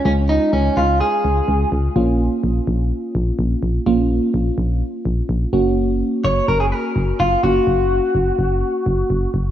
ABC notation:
X:1
M:4/4
L:1/16
Q:1/4=126
K:Gblyd
V:1 name="Clean electric guitar"
D2 E2 D2 F2 A6 z2 | z16 | z16 | z4 d2 B A B4 F2 G2- |
G12- G2 z2 |]
V:2 name="FM electric piano"
[A,DF]16 | [B,DF]16 | [B,DF]12- [B,DF]2 [B,DG]2- | [B,DG]12- [B,DG]2 [B,DG]2- |
[B,DG]12- [B,DG]2 z2 |]
V:3 name="FM bass" clef=bass
D,,4 D,,2 D,,3 z D,,2 D,,2 D,,2 | B,,,4 B,,,2 B,,,3 z B,,,2 B,,,2 B,,,2 | B,,,4 B,,,2 B,,,3 z B,,,2 B,,,2 G,,,2- | G,,,4 G,,,2 G,,,3 z G,,,2 G,,,2 G,,,2 |
G,,,4 G,,,2 G,,,3 z G,,,2 G,,,2 G,,,2 |]